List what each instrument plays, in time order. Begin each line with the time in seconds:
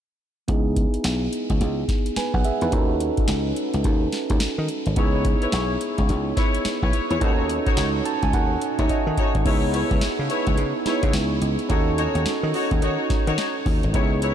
0.48 slap bass C#2, tine electric piano B3 D#4 E4 G#4, kick, closed hi-hat
0.76 kick, closed hi-hat
0.94 closed hi-hat
1.04 slap bass B1, snare, closed hi-hat
1.33 closed hi-hat
1.50 slap bass C#2, kick, closed hi-hat
1.61 slap bass C#2, closed hi-hat
1.88 kick, snare, closed hi-hat
2.06 closed hi-hat
2.16 tine electric piano B4 G#5, muted slap bass stroke, snare, closed hi-hat
2.34 slap bass B1, tine electric piano F#5, kick
2.44 tine electric piano G#4 E5, closed hi-hat
2.61 slap bass E2, tine electric piano D#4 B4, closed hi-hat
2.72 slap bass D#2, tine electric piano C#4 D#4 F#4 A4, kick, closed hi-hat
3.00 closed hi-hat
3.17 kick, closed hi-hat
3.28 slap bass C#2, snare, closed hi-hat
3.56 closed hi-hat
3.74 slap bass C#2, closed hi-hat
3.84 slap bass D#2, kick, closed hi-hat
4.12 snare, closed hi-hat
4.30 slap bass D#2, kick, closed hi-hat
4.40 snare, closed hi-hat
4.58 slap bass D#3
4.68 closed hi-hat
4.86 slap bass G#1, closed hi-hat
4.96 slap bass C#2, tine electric piano B3 D#4 E4 G#4, string section E4 B4 C#5, kick, closed hi-hat
5.25 kick, closed hi-hat
5.42 string section E4 B4 C#5, closed hi-hat
5.52 slap bass B1, snare, closed hi-hat
5.81 closed hi-hat
5.98 slap bass C#2, kick, closed hi-hat
6.09 slap bass C#2, closed hi-hat
6.37 string section E4 B4 C#5, kick, snare, closed hi-hat
6.54 closed hi-hat
6.65 muted slap bass stroke, snare, closed hi-hat
6.82 slap bass B1, string section E4 B4 C#5, kick
6.93 closed hi-hat
7.10 slap bass E2, string section E4 B4 C#5, closed hi-hat
7.20 slap bass D#2, tine electric piano C#4 D#4 F#4 A4, string section D#4 F#4 C#5, kick, closed hi-hat
7.50 closed hi-hat
7.66 string section D#4 F#4 C#5, kick, closed hi-hat
7.77 slap bass C#2, snare, closed hi-hat
8.05 tine electric piano A5, closed hi-hat
8.23 slap bass C#2, tine electric piano G#5, kick, closed hi-hat
8.33 slap bass D#2, tine electric piano F#5, kick, closed hi-hat
8.61 closed hi-hat
8.78 slap bass D#2, string section D#4 F#4 C#5, tine electric piano E5, kick, closed hi-hat
8.89 tine electric piano D#5, kick, closed hi-hat
9.07 slap bass D#3
9.17 string section D#4 F#4 C#5, kick, closed hi-hat
9.35 slap bass G#1, kick, closed hi-hat
9.44 slap bass C#2, tine electric piano B3 D#4 E4 G#4, string section E4 B4 C#5, kick, closed hi-hat, crash
9.73 string section E4 B4 C#5, closed hi-hat
9.91 slap bass C#2, kick, closed hi-hat
10.01 muted slap bass stroke, snare, closed hi-hat
10.19 slap bass C#3
10.29 string section E4 B4 C#5, closed hi-hat
10.47 slap bass C#2, kick, closed hi-hat
10.58 slap bass C#3, closed hi-hat
10.85 tine electric piano B3 D#4 E4 G#4, string section E4 B4 C#5, muted slap bass stroke, snare, closed hi-hat
11.03 slap bass C#3, kick, closed hi-hat
11.13 slap bass C#2, snare, closed hi-hat
11.42 slap bass C#2, closed hi-hat
11.59 closed hi-hat
11.69 slap bass D#2, tine electric piano C#4 D#4 F#4 A4, string section D#4 F#4 C#5, kick, closed hi-hat
11.98 string section D#4 F#4 C#5, closed hi-hat
12.15 slap bass D#2, closed hi-hat
12.26 muted slap bass stroke, snare, closed hi-hat
12.43 slap bass D#3
12.54 string section D#4 F#4 C#5, open hi-hat
12.71 slap bass D#2, kick, closed hi-hat
12.82 slap bass D#3, string section D#4 F#4 C#5, closed hi-hat
13.10 muted slap bass stroke, kick, snare, closed hi-hat
13.27 slap bass D#3, string section D#4 F#4 C#5, closed hi-hat
13.38 snare, closed hi-hat
13.66 slap bass D#2, kick, open hi-hat
13.83 slap bass G#1, closed hi-hat
13.93 slap bass C#2, tine electric piano B3 D#4 E4 G#4, string section E4 B4 C#5, kick, closed hi-hat
14.22 string section E4 B4 C#5, closed hi-hat